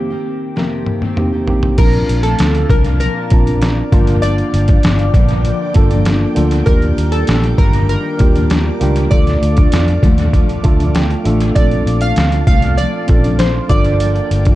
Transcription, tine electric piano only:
Already playing: A#3 C4 D#4 G4
1.16 A#3 C4 D#4 G4
1.47 A#3 C4 D#4 G4
1.77 C4 D4 F4 A5
3.30 C4 D4 F4 A5
3.92 A#3 D4 F4 A5
5.74 A#3 D4 F4 A4
6.35 A#3 D4 F4 A4
6.66 A#3 D4 F4 G4
8.19 A#3 D4 F4 G4
8.80 A#3 D4 F4 G4
9.10 A3 D4 F4 A4
10.63 A3 D4 F4 A4 A5
10.95 G5
11.24 A3 D4 F4 A4 F5
11.55 C4 D4 F4 A4
13.07 C4 C#4 F4 A4
13.15 D4
13.68 A#3 D4 F4 A4

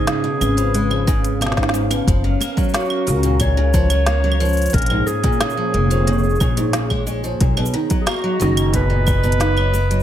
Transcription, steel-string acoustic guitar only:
0.07 G#2
0.24 B2
0.41 C#3
0.57 F3
0.74 G#3
0.91 F3
1.07 C#3
1.41 B2
1.57 G#2
1.74 G#2
1.91 B2
2.08 F3
2.24 F#3
2.40 A#3
2.57 F#3
2.74 F#3
3.07 C#3
3.24 A#2
3.40 A#2
3.57 C#3
3.74 F3
3.91 F#3
4.07 A#3
4.24 F#3
4.40 F3
4.73 A#2
4.90 G#2
5.07 G#2
5.23 A#2
5.40 C#3
5.57 F3
5.74 G#3
5.90 F3
6.07 C#3
6.41 C#3
6.57 G#2
6.74 C#3
6.90 G#3
7.07 G#3
7.24 F3
7.40 A#2
7.57 B2
7.74 D#3
7.90 F#3
8.06 A#3
8.24 F#3
8.40 D#3
8.73 B2
8.90 A#2
9.06 A#2
9.23 B2
9.40 D#3
9.57 F#3
9.74 A#3
9.91 F#3

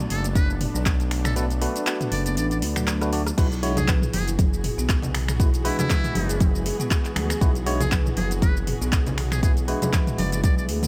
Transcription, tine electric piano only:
1.36 A3 D4 F#4 B4
1.61 A3 D4 F#4 B4
3.01 A3 D4 F#4 B4
3.13 A3 D4 F#4 D5
3.38 G#3 E4 F#4 B4
3.63 G#3 E4 F#4 C#5
5.40 G#3 E4 F#4 B4
5.65 G#3 E4 F#4 B4
7.41 G#3 E4 F#4 B4
7.66 G#3 E4 F#4 C#5
9.43 G#3 E4 F#4 B4
9.68 G#3 E4 F#4 B4

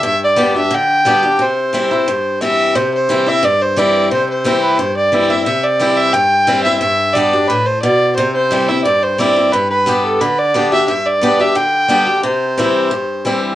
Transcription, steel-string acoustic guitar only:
0.03 G2
0.37 G3 B3 D4 G4
0.55 D4 G4
0.71 D3
1.05 G3 B3 D4 G4
1.23 D4 G4
1.39 C3
1.73 E3 G3 C4 E4
1.91 C4 E4
2.08 G2
2.41 E3 G3 C4 E4
2.75 C3
3.09 E3 G3 C4 E4
3.26 C4 E4
3.43 G2
3.76 E3 G3 C4 E4
4.11 C3
4.44 E3 G3 C4 E4
4.79 G2
5.12 E3 G3 C4 E4
5.30 C4 E4
5.46 C3
5.79 E3 G3 C4 E4
6.14 G2
6.47 E3 G3 C4 E4
6.65 C4 E4
6.81 G2
7.15 G3 B3 D4 G4
7.34 D4 G4
7.50 A2
7.84 B2
8.18 C3
8.51 E3 G3 C4 E4
8.69 C4 E4
8.86 G2
9.18 E3 G3 C4 E4
9.36 C4 E4
9.53 G2
9.86 G3 B3 D4 G4
10.21 D3
10.54 G3 B3 D4 G4
10.72 D4 G4
10.88 G2
11.21 G3 B3 D4 G4
11.39 D4 G4
11.55 D3
11.88 G3 B3 D4 G4
12.06 D4 G4
12.23 C3
12.57 E3 G3 C4 E4
12.91 G2
13.25 E3 G3 C4 E4

